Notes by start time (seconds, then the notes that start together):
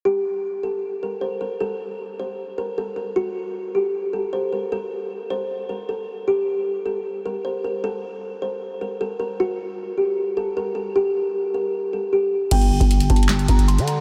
0.05 G4
0.63 A4
1.03 A#4
1.21 C5
1.41 A#4
1.60 A4
2.20 C5
2.58 A#4
2.78 A4
2.96 A#4
3.16 F#4
3.75 G4
4.13 A4
4.33 C5
4.53 A#4
4.72 A4
5.30 C5
5.69 A#4
5.89 A4
6.28 G4
6.86 A4
7.26 A#4
7.45 C5
7.64 A#4
7.84 A4
8.42 C5
8.81 A#4
9.01 A4
9.20 A#4
9.40 F#4
9.98 G4
10.37 A4
10.57 A#4
10.75 A4
10.96 G4
11.54 A#4
11.93 A4
12.13 G4
12.51 G1 G5, kick, closed hi-hat, crash
12.62 closed hi-hat
12.80 G1, kick, closed hi-hat
12.91 closed hi-hat
13.00 closed hi-hat
13.10 G1 A5, kick, closed hi-hat
13.16 closed hi-hat
13.23 closed hi-hat
13.29 snare, clap, closed hi-hat
13.39 closed hi-hat
13.48 G1 A#5, kick, closed hi-hat
13.59 kick, closed hi-hat
13.68 C6, closed hi-hat
13.78 D3, closed hi-hat
13.88 A#5, closed hi-hat